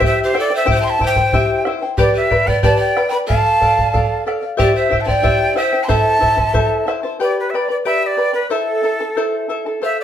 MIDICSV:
0, 0, Header, 1, 5, 480
1, 0, Start_track
1, 0, Key_signature, 0, "minor"
1, 0, Tempo, 652174
1, 497, Time_signature, 2, 2, 24, 8
1, 7389, End_track
2, 0, Start_track
2, 0, Title_t, "Quena"
2, 0, Program_c, 0, 77
2, 47, Note_on_c, 0, 76, 90
2, 144, Note_off_c, 0, 76, 0
2, 175, Note_on_c, 0, 72, 81
2, 268, Note_off_c, 0, 72, 0
2, 296, Note_on_c, 0, 74, 89
2, 389, Note_off_c, 0, 74, 0
2, 416, Note_on_c, 0, 76, 87
2, 510, Note_off_c, 0, 76, 0
2, 554, Note_on_c, 0, 79, 94
2, 606, Note_off_c, 0, 79, 0
2, 610, Note_on_c, 0, 84, 72
2, 662, Note_on_c, 0, 81, 104
2, 673, Note_off_c, 0, 84, 0
2, 760, Note_off_c, 0, 81, 0
2, 785, Note_on_c, 0, 79, 92
2, 1213, Note_off_c, 0, 79, 0
2, 1477, Note_on_c, 0, 74, 85
2, 1580, Note_off_c, 0, 74, 0
2, 1596, Note_on_c, 0, 76, 79
2, 1821, Note_on_c, 0, 79, 86
2, 1832, Note_off_c, 0, 76, 0
2, 1935, Note_off_c, 0, 79, 0
2, 1939, Note_on_c, 0, 81, 92
2, 2051, Note_off_c, 0, 81, 0
2, 2061, Note_on_c, 0, 79, 94
2, 2284, Note_off_c, 0, 79, 0
2, 2295, Note_on_c, 0, 83, 95
2, 2339, Note_off_c, 0, 83, 0
2, 2420, Note_on_c, 0, 81, 103
2, 3111, Note_off_c, 0, 81, 0
2, 3391, Note_on_c, 0, 74, 81
2, 3498, Note_off_c, 0, 74, 0
2, 3501, Note_on_c, 0, 76, 84
2, 3686, Note_on_c, 0, 81, 67
2, 3697, Note_off_c, 0, 76, 0
2, 3738, Note_on_c, 0, 79, 97
2, 3749, Note_off_c, 0, 81, 0
2, 4096, Note_off_c, 0, 79, 0
2, 4101, Note_on_c, 0, 76, 93
2, 4299, Note_on_c, 0, 84, 77
2, 4310, Note_off_c, 0, 76, 0
2, 4340, Note_on_c, 0, 81, 109
2, 4351, Note_off_c, 0, 84, 0
2, 5060, Note_off_c, 0, 81, 0
2, 5320, Note_on_c, 0, 74, 92
2, 5422, Note_off_c, 0, 74, 0
2, 5446, Note_on_c, 0, 71, 79
2, 5521, Note_on_c, 0, 76, 60
2, 5532, Note_off_c, 0, 71, 0
2, 5560, Note_on_c, 0, 74, 80
2, 5571, Note_off_c, 0, 76, 0
2, 5670, Note_off_c, 0, 74, 0
2, 5674, Note_on_c, 0, 74, 81
2, 5718, Note_off_c, 0, 74, 0
2, 5780, Note_on_c, 0, 76, 99
2, 5908, Note_off_c, 0, 76, 0
2, 5908, Note_on_c, 0, 76, 83
2, 5936, Note_on_c, 0, 74, 90
2, 5943, Note_off_c, 0, 76, 0
2, 6138, Note_off_c, 0, 74, 0
2, 6142, Note_on_c, 0, 71, 78
2, 6252, Note_off_c, 0, 71, 0
2, 6258, Note_on_c, 0, 69, 81
2, 6948, Note_off_c, 0, 69, 0
2, 7245, Note_on_c, 0, 76, 89
2, 7343, Note_off_c, 0, 76, 0
2, 7366, Note_on_c, 0, 74, 73
2, 7389, Note_off_c, 0, 74, 0
2, 7389, End_track
3, 0, Start_track
3, 0, Title_t, "Charango"
3, 0, Program_c, 1, 24
3, 0, Note_on_c, 1, 67, 73
3, 1, Note_on_c, 1, 72, 86
3, 1, Note_on_c, 1, 76, 77
3, 4, Note_on_c, 1, 79, 83
3, 7, Note_on_c, 1, 64, 79
3, 238, Note_off_c, 1, 76, 0
3, 242, Note_off_c, 1, 64, 0
3, 246, Note_off_c, 1, 67, 0
3, 247, Note_on_c, 1, 76, 65
3, 249, Note_off_c, 1, 72, 0
3, 249, Note_off_c, 1, 79, 0
3, 251, Note_on_c, 1, 64, 59
3, 257, Note_on_c, 1, 72, 57
3, 257, Note_on_c, 1, 79, 64
3, 362, Note_off_c, 1, 79, 0
3, 366, Note_off_c, 1, 72, 0
3, 370, Note_off_c, 1, 64, 0
3, 371, Note_on_c, 1, 79, 53
3, 372, Note_off_c, 1, 76, 0
3, 375, Note_on_c, 1, 72, 45
3, 379, Note_on_c, 1, 64, 42
3, 477, Note_off_c, 1, 72, 0
3, 478, Note_off_c, 1, 64, 0
3, 482, Note_off_c, 1, 79, 0
3, 482, Note_on_c, 1, 67, 78
3, 486, Note_on_c, 1, 64, 85
3, 486, Note_on_c, 1, 72, 90
3, 486, Note_on_c, 1, 76, 81
3, 491, Note_on_c, 1, 79, 91
3, 724, Note_off_c, 1, 76, 0
3, 728, Note_off_c, 1, 64, 0
3, 730, Note_off_c, 1, 67, 0
3, 732, Note_off_c, 1, 72, 0
3, 732, Note_on_c, 1, 76, 60
3, 735, Note_off_c, 1, 79, 0
3, 737, Note_on_c, 1, 64, 63
3, 744, Note_on_c, 1, 72, 63
3, 745, Note_on_c, 1, 79, 73
3, 840, Note_off_c, 1, 79, 0
3, 848, Note_off_c, 1, 72, 0
3, 849, Note_on_c, 1, 79, 53
3, 854, Note_off_c, 1, 64, 0
3, 855, Note_off_c, 1, 76, 0
3, 857, Note_on_c, 1, 72, 47
3, 863, Note_on_c, 1, 64, 45
3, 973, Note_off_c, 1, 64, 0
3, 974, Note_off_c, 1, 79, 0
3, 977, Note_off_c, 1, 72, 0
3, 982, Note_on_c, 1, 64, 76
3, 982, Note_on_c, 1, 67, 72
3, 985, Note_on_c, 1, 72, 86
3, 988, Note_on_c, 1, 76, 85
3, 989, Note_on_c, 1, 79, 75
3, 1213, Note_off_c, 1, 76, 0
3, 1215, Note_off_c, 1, 64, 0
3, 1218, Note_off_c, 1, 72, 0
3, 1221, Note_off_c, 1, 67, 0
3, 1222, Note_off_c, 1, 79, 0
3, 1222, Note_on_c, 1, 76, 54
3, 1224, Note_on_c, 1, 64, 60
3, 1227, Note_on_c, 1, 72, 67
3, 1231, Note_on_c, 1, 79, 63
3, 1332, Note_off_c, 1, 79, 0
3, 1338, Note_off_c, 1, 72, 0
3, 1341, Note_off_c, 1, 76, 0
3, 1341, Note_on_c, 1, 79, 49
3, 1342, Note_off_c, 1, 64, 0
3, 1347, Note_on_c, 1, 72, 45
3, 1357, Note_on_c, 1, 64, 41
3, 1454, Note_off_c, 1, 79, 0
3, 1458, Note_on_c, 1, 67, 83
3, 1459, Note_off_c, 1, 64, 0
3, 1460, Note_off_c, 1, 72, 0
3, 1462, Note_on_c, 1, 71, 80
3, 1462, Note_on_c, 1, 83, 90
3, 1463, Note_on_c, 1, 79, 82
3, 1466, Note_on_c, 1, 74, 83
3, 1686, Note_off_c, 1, 79, 0
3, 1691, Note_off_c, 1, 74, 0
3, 1693, Note_off_c, 1, 71, 0
3, 1695, Note_on_c, 1, 79, 57
3, 1698, Note_off_c, 1, 83, 0
3, 1699, Note_off_c, 1, 67, 0
3, 1700, Note_on_c, 1, 74, 68
3, 1702, Note_on_c, 1, 71, 60
3, 1707, Note_on_c, 1, 83, 66
3, 1803, Note_off_c, 1, 83, 0
3, 1812, Note_on_c, 1, 83, 53
3, 1813, Note_off_c, 1, 71, 0
3, 1813, Note_off_c, 1, 74, 0
3, 1818, Note_off_c, 1, 79, 0
3, 1822, Note_on_c, 1, 71, 46
3, 1822, Note_on_c, 1, 74, 48
3, 1935, Note_off_c, 1, 71, 0
3, 1935, Note_off_c, 1, 74, 0
3, 1935, Note_on_c, 1, 67, 69
3, 1936, Note_off_c, 1, 83, 0
3, 1936, Note_on_c, 1, 79, 80
3, 1944, Note_on_c, 1, 71, 75
3, 1944, Note_on_c, 1, 74, 84
3, 1945, Note_on_c, 1, 83, 84
3, 2174, Note_off_c, 1, 71, 0
3, 2175, Note_off_c, 1, 79, 0
3, 2178, Note_off_c, 1, 67, 0
3, 2179, Note_off_c, 1, 74, 0
3, 2180, Note_off_c, 1, 83, 0
3, 2183, Note_on_c, 1, 71, 52
3, 2183, Note_on_c, 1, 79, 59
3, 2187, Note_on_c, 1, 74, 59
3, 2188, Note_on_c, 1, 83, 65
3, 2280, Note_off_c, 1, 83, 0
3, 2288, Note_off_c, 1, 74, 0
3, 2289, Note_on_c, 1, 83, 54
3, 2291, Note_off_c, 1, 71, 0
3, 2297, Note_on_c, 1, 74, 49
3, 2300, Note_on_c, 1, 71, 43
3, 2302, Note_off_c, 1, 79, 0
3, 2403, Note_off_c, 1, 71, 0
3, 2404, Note_off_c, 1, 74, 0
3, 2406, Note_on_c, 1, 69, 76
3, 2413, Note_on_c, 1, 74, 80
3, 2415, Note_off_c, 1, 83, 0
3, 2420, Note_on_c, 1, 77, 87
3, 2646, Note_off_c, 1, 69, 0
3, 2651, Note_off_c, 1, 74, 0
3, 2655, Note_on_c, 1, 69, 61
3, 2660, Note_on_c, 1, 74, 64
3, 2661, Note_off_c, 1, 77, 0
3, 2671, Note_on_c, 1, 77, 66
3, 2769, Note_off_c, 1, 77, 0
3, 2778, Note_off_c, 1, 69, 0
3, 2778, Note_off_c, 1, 74, 0
3, 2778, Note_on_c, 1, 77, 49
3, 2787, Note_on_c, 1, 74, 47
3, 2888, Note_off_c, 1, 74, 0
3, 2893, Note_off_c, 1, 77, 0
3, 2895, Note_on_c, 1, 69, 73
3, 2897, Note_on_c, 1, 74, 83
3, 2902, Note_on_c, 1, 77, 85
3, 3129, Note_off_c, 1, 69, 0
3, 3134, Note_off_c, 1, 74, 0
3, 3136, Note_off_c, 1, 77, 0
3, 3138, Note_on_c, 1, 69, 63
3, 3142, Note_on_c, 1, 74, 70
3, 3145, Note_on_c, 1, 77, 70
3, 3247, Note_off_c, 1, 77, 0
3, 3252, Note_off_c, 1, 74, 0
3, 3256, Note_on_c, 1, 77, 54
3, 3259, Note_off_c, 1, 69, 0
3, 3261, Note_on_c, 1, 74, 45
3, 3362, Note_off_c, 1, 74, 0
3, 3365, Note_on_c, 1, 67, 74
3, 3366, Note_on_c, 1, 76, 82
3, 3369, Note_off_c, 1, 77, 0
3, 3372, Note_on_c, 1, 72, 81
3, 3374, Note_on_c, 1, 64, 85
3, 3374, Note_on_c, 1, 79, 91
3, 3594, Note_off_c, 1, 76, 0
3, 3602, Note_off_c, 1, 64, 0
3, 3602, Note_on_c, 1, 76, 61
3, 3606, Note_off_c, 1, 72, 0
3, 3610, Note_off_c, 1, 79, 0
3, 3611, Note_on_c, 1, 64, 67
3, 3613, Note_off_c, 1, 67, 0
3, 3615, Note_on_c, 1, 72, 68
3, 3619, Note_on_c, 1, 79, 66
3, 3722, Note_off_c, 1, 79, 0
3, 3727, Note_off_c, 1, 72, 0
3, 3728, Note_off_c, 1, 64, 0
3, 3731, Note_on_c, 1, 79, 56
3, 3732, Note_off_c, 1, 76, 0
3, 3735, Note_on_c, 1, 72, 48
3, 3737, Note_on_c, 1, 64, 41
3, 3840, Note_off_c, 1, 64, 0
3, 3845, Note_off_c, 1, 79, 0
3, 3846, Note_off_c, 1, 72, 0
3, 3849, Note_on_c, 1, 64, 82
3, 3850, Note_on_c, 1, 67, 75
3, 3851, Note_on_c, 1, 76, 83
3, 3854, Note_on_c, 1, 79, 88
3, 3855, Note_on_c, 1, 72, 82
3, 4079, Note_off_c, 1, 76, 0
3, 4081, Note_off_c, 1, 64, 0
3, 4083, Note_off_c, 1, 72, 0
3, 4086, Note_off_c, 1, 79, 0
3, 4088, Note_on_c, 1, 76, 55
3, 4089, Note_on_c, 1, 64, 60
3, 4092, Note_on_c, 1, 72, 67
3, 4095, Note_off_c, 1, 67, 0
3, 4095, Note_on_c, 1, 79, 65
3, 4204, Note_off_c, 1, 79, 0
3, 4209, Note_off_c, 1, 72, 0
3, 4212, Note_on_c, 1, 79, 54
3, 4214, Note_off_c, 1, 76, 0
3, 4215, Note_off_c, 1, 64, 0
3, 4217, Note_on_c, 1, 72, 45
3, 4225, Note_on_c, 1, 64, 46
3, 4324, Note_off_c, 1, 72, 0
3, 4325, Note_off_c, 1, 64, 0
3, 4327, Note_off_c, 1, 79, 0
3, 4330, Note_on_c, 1, 69, 83
3, 4330, Note_on_c, 1, 76, 82
3, 4333, Note_on_c, 1, 72, 90
3, 4334, Note_on_c, 1, 64, 76
3, 4341, Note_on_c, 1, 81, 84
3, 4557, Note_off_c, 1, 64, 0
3, 4558, Note_off_c, 1, 76, 0
3, 4563, Note_off_c, 1, 69, 0
3, 4565, Note_off_c, 1, 72, 0
3, 4566, Note_on_c, 1, 64, 63
3, 4566, Note_on_c, 1, 76, 66
3, 4569, Note_off_c, 1, 81, 0
3, 4574, Note_on_c, 1, 72, 68
3, 4578, Note_on_c, 1, 81, 72
3, 4681, Note_off_c, 1, 81, 0
3, 4684, Note_off_c, 1, 72, 0
3, 4687, Note_off_c, 1, 64, 0
3, 4690, Note_on_c, 1, 81, 51
3, 4693, Note_off_c, 1, 76, 0
3, 4693, Note_on_c, 1, 72, 52
3, 4696, Note_on_c, 1, 64, 43
3, 4807, Note_off_c, 1, 72, 0
3, 4807, Note_on_c, 1, 69, 78
3, 4808, Note_off_c, 1, 64, 0
3, 4811, Note_off_c, 1, 81, 0
3, 4814, Note_on_c, 1, 76, 84
3, 4815, Note_on_c, 1, 72, 80
3, 4817, Note_on_c, 1, 64, 77
3, 4820, Note_on_c, 1, 81, 90
3, 5044, Note_off_c, 1, 76, 0
3, 5050, Note_off_c, 1, 64, 0
3, 5050, Note_off_c, 1, 69, 0
3, 5053, Note_on_c, 1, 76, 59
3, 5057, Note_off_c, 1, 81, 0
3, 5058, Note_off_c, 1, 72, 0
3, 5058, Note_on_c, 1, 64, 67
3, 5066, Note_on_c, 1, 81, 77
3, 5067, Note_on_c, 1, 72, 66
3, 5166, Note_off_c, 1, 81, 0
3, 5174, Note_off_c, 1, 72, 0
3, 5175, Note_on_c, 1, 81, 60
3, 5177, Note_off_c, 1, 76, 0
3, 5179, Note_off_c, 1, 64, 0
3, 5183, Note_on_c, 1, 72, 54
3, 5189, Note_on_c, 1, 64, 47
3, 5296, Note_off_c, 1, 72, 0
3, 5297, Note_on_c, 1, 67, 72
3, 5298, Note_off_c, 1, 81, 0
3, 5299, Note_on_c, 1, 79, 73
3, 5301, Note_off_c, 1, 64, 0
3, 5304, Note_on_c, 1, 71, 81
3, 5306, Note_on_c, 1, 74, 80
3, 5307, Note_on_c, 1, 83, 78
3, 5538, Note_off_c, 1, 67, 0
3, 5539, Note_off_c, 1, 71, 0
3, 5539, Note_off_c, 1, 79, 0
3, 5543, Note_off_c, 1, 74, 0
3, 5543, Note_off_c, 1, 83, 0
3, 5548, Note_on_c, 1, 71, 57
3, 5549, Note_on_c, 1, 79, 51
3, 5551, Note_on_c, 1, 74, 62
3, 5558, Note_on_c, 1, 83, 69
3, 5648, Note_off_c, 1, 83, 0
3, 5651, Note_off_c, 1, 74, 0
3, 5657, Note_on_c, 1, 83, 48
3, 5659, Note_off_c, 1, 71, 0
3, 5660, Note_on_c, 1, 74, 45
3, 5664, Note_off_c, 1, 79, 0
3, 5668, Note_on_c, 1, 71, 43
3, 5771, Note_off_c, 1, 74, 0
3, 5776, Note_off_c, 1, 71, 0
3, 5778, Note_off_c, 1, 83, 0
3, 5780, Note_on_c, 1, 74, 83
3, 5781, Note_on_c, 1, 67, 66
3, 5781, Note_on_c, 1, 79, 69
3, 5785, Note_on_c, 1, 71, 71
3, 5787, Note_on_c, 1, 83, 72
3, 6003, Note_off_c, 1, 79, 0
3, 6006, Note_off_c, 1, 74, 0
3, 6007, Note_off_c, 1, 71, 0
3, 6012, Note_on_c, 1, 79, 55
3, 6013, Note_off_c, 1, 83, 0
3, 6015, Note_on_c, 1, 74, 50
3, 6016, Note_on_c, 1, 71, 56
3, 6020, Note_off_c, 1, 67, 0
3, 6022, Note_on_c, 1, 83, 59
3, 6124, Note_off_c, 1, 83, 0
3, 6129, Note_off_c, 1, 74, 0
3, 6132, Note_off_c, 1, 71, 0
3, 6133, Note_on_c, 1, 83, 48
3, 6135, Note_off_c, 1, 79, 0
3, 6138, Note_on_c, 1, 74, 44
3, 6140, Note_on_c, 1, 71, 36
3, 6256, Note_off_c, 1, 83, 0
3, 6257, Note_on_c, 1, 72, 78
3, 6258, Note_off_c, 1, 74, 0
3, 6259, Note_off_c, 1, 71, 0
3, 6262, Note_on_c, 1, 69, 74
3, 6263, Note_on_c, 1, 64, 76
3, 6263, Note_on_c, 1, 76, 74
3, 6265, Note_on_c, 1, 81, 83
3, 6491, Note_off_c, 1, 76, 0
3, 6494, Note_off_c, 1, 64, 0
3, 6495, Note_off_c, 1, 69, 0
3, 6497, Note_off_c, 1, 72, 0
3, 6500, Note_on_c, 1, 76, 54
3, 6501, Note_off_c, 1, 81, 0
3, 6502, Note_on_c, 1, 64, 57
3, 6504, Note_on_c, 1, 69, 61
3, 6510, Note_on_c, 1, 81, 63
3, 6617, Note_off_c, 1, 81, 0
3, 6619, Note_off_c, 1, 76, 0
3, 6620, Note_off_c, 1, 64, 0
3, 6621, Note_off_c, 1, 69, 0
3, 6626, Note_on_c, 1, 81, 52
3, 6632, Note_on_c, 1, 69, 44
3, 6640, Note_on_c, 1, 64, 41
3, 6742, Note_off_c, 1, 64, 0
3, 6742, Note_off_c, 1, 81, 0
3, 6745, Note_off_c, 1, 69, 0
3, 6747, Note_on_c, 1, 76, 77
3, 6748, Note_on_c, 1, 72, 67
3, 6751, Note_on_c, 1, 64, 70
3, 6753, Note_on_c, 1, 69, 79
3, 6756, Note_on_c, 1, 81, 75
3, 6977, Note_off_c, 1, 76, 0
3, 6979, Note_off_c, 1, 64, 0
3, 6982, Note_off_c, 1, 69, 0
3, 6982, Note_off_c, 1, 72, 0
3, 6982, Note_off_c, 1, 81, 0
3, 6985, Note_on_c, 1, 76, 55
3, 6988, Note_on_c, 1, 64, 64
3, 6990, Note_on_c, 1, 69, 60
3, 6991, Note_on_c, 1, 81, 67
3, 7101, Note_off_c, 1, 76, 0
3, 7101, Note_off_c, 1, 81, 0
3, 7102, Note_off_c, 1, 64, 0
3, 7104, Note_off_c, 1, 69, 0
3, 7110, Note_on_c, 1, 81, 47
3, 7114, Note_on_c, 1, 69, 43
3, 7122, Note_on_c, 1, 64, 41
3, 7215, Note_off_c, 1, 69, 0
3, 7221, Note_off_c, 1, 64, 0
3, 7223, Note_off_c, 1, 81, 0
3, 7224, Note_on_c, 1, 69, 75
3, 7231, Note_on_c, 1, 72, 76
3, 7235, Note_on_c, 1, 77, 89
3, 7389, Note_off_c, 1, 69, 0
3, 7389, Note_off_c, 1, 72, 0
3, 7389, Note_off_c, 1, 77, 0
3, 7389, End_track
4, 0, Start_track
4, 0, Title_t, "Pan flute"
4, 0, Program_c, 2, 75
4, 43, Note_on_c, 2, 72, 77
4, 142, Note_off_c, 2, 72, 0
4, 173, Note_on_c, 2, 67, 64
4, 268, Note_off_c, 2, 67, 0
4, 273, Note_on_c, 2, 69, 74
4, 377, Note_off_c, 2, 69, 0
4, 403, Note_on_c, 2, 72, 73
4, 502, Note_off_c, 2, 72, 0
4, 517, Note_on_c, 2, 72, 89
4, 591, Note_off_c, 2, 72, 0
4, 597, Note_on_c, 2, 81, 63
4, 634, Note_on_c, 2, 76, 81
4, 645, Note_off_c, 2, 81, 0
4, 746, Note_off_c, 2, 76, 0
4, 759, Note_on_c, 2, 72, 84
4, 1200, Note_off_c, 2, 72, 0
4, 1455, Note_on_c, 2, 67, 70
4, 1569, Note_off_c, 2, 67, 0
4, 1572, Note_on_c, 2, 71, 63
4, 1817, Note_on_c, 2, 74, 68
4, 1829, Note_off_c, 2, 71, 0
4, 1930, Note_off_c, 2, 74, 0
4, 1934, Note_on_c, 2, 74, 82
4, 2029, Note_off_c, 2, 74, 0
4, 2034, Note_on_c, 2, 74, 75
4, 2269, Note_off_c, 2, 74, 0
4, 2273, Note_on_c, 2, 79, 79
4, 2317, Note_off_c, 2, 79, 0
4, 2405, Note_on_c, 2, 77, 86
4, 3104, Note_off_c, 2, 77, 0
4, 3381, Note_on_c, 2, 67, 72
4, 3493, Note_off_c, 2, 67, 0
4, 3501, Note_on_c, 2, 72, 67
4, 3712, Note_on_c, 2, 77, 55
4, 3723, Note_off_c, 2, 72, 0
4, 3740, Note_on_c, 2, 74, 80
4, 3751, Note_off_c, 2, 77, 0
4, 4100, Note_off_c, 2, 74, 0
4, 4104, Note_on_c, 2, 72, 79
4, 4289, Note_on_c, 2, 81, 59
4, 4300, Note_off_c, 2, 72, 0
4, 4328, Note_on_c, 2, 76, 95
4, 4339, Note_off_c, 2, 81, 0
4, 5054, Note_off_c, 2, 76, 0
4, 7389, End_track
5, 0, Start_track
5, 0, Title_t, "Bombo"
5, 13, Note_on_c, 9, 43, 73
5, 86, Note_off_c, 9, 43, 0
5, 256, Note_on_c, 9, 37, 56
5, 329, Note_off_c, 9, 37, 0
5, 500, Note_on_c, 9, 43, 74
5, 574, Note_off_c, 9, 43, 0
5, 741, Note_on_c, 9, 43, 55
5, 815, Note_off_c, 9, 43, 0
5, 855, Note_on_c, 9, 43, 58
5, 929, Note_off_c, 9, 43, 0
5, 980, Note_on_c, 9, 43, 72
5, 1054, Note_off_c, 9, 43, 0
5, 1216, Note_on_c, 9, 37, 57
5, 1289, Note_off_c, 9, 37, 0
5, 1457, Note_on_c, 9, 43, 83
5, 1531, Note_off_c, 9, 43, 0
5, 1702, Note_on_c, 9, 43, 58
5, 1776, Note_off_c, 9, 43, 0
5, 1824, Note_on_c, 9, 43, 64
5, 1898, Note_off_c, 9, 43, 0
5, 1938, Note_on_c, 9, 43, 79
5, 2011, Note_off_c, 9, 43, 0
5, 2183, Note_on_c, 9, 37, 58
5, 2257, Note_off_c, 9, 37, 0
5, 2429, Note_on_c, 9, 43, 76
5, 2503, Note_off_c, 9, 43, 0
5, 2664, Note_on_c, 9, 43, 53
5, 2738, Note_off_c, 9, 43, 0
5, 2787, Note_on_c, 9, 43, 61
5, 2861, Note_off_c, 9, 43, 0
5, 2905, Note_on_c, 9, 43, 73
5, 2978, Note_off_c, 9, 43, 0
5, 3149, Note_on_c, 9, 37, 55
5, 3222, Note_off_c, 9, 37, 0
5, 3382, Note_on_c, 9, 43, 73
5, 3456, Note_off_c, 9, 43, 0
5, 3624, Note_on_c, 9, 43, 52
5, 3697, Note_off_c, 9, 43, 0
5, 3742, Note_on_c, 9, 43, 56
5, 3816, Note_off_c, 9, 43, 0
5, 3860, Note_on_c, 9, 43, 73
5, 3933, Note_off_c, 9, 43, 0
5, 4103, Note_on_c, 9, 37, 52
5, 4176, Note_off_c, 9, 37, 0
5, 4339, Note_on_c, 9, 43, 72
5, 4413, Note_off_c, 9, 43, 0
5, 4582, Note_on_c, 9, 43, 53
5, 4656, Note_off_c, 9, 43, 0
5, 4697, Note_on_c, 9, 43, 56
5, 4770, Note_off_c, 9, 43, 0
5, 4816, Note_on_c, 9, 43, 72
5, 4890, Note_off_c, 9, 43, 0
5, 5064, Note_on_c, 9, 37, 57
5, 5138, Note_off_c, 9, 37, 0
5, 7389, End_track
0, 0, End_of_file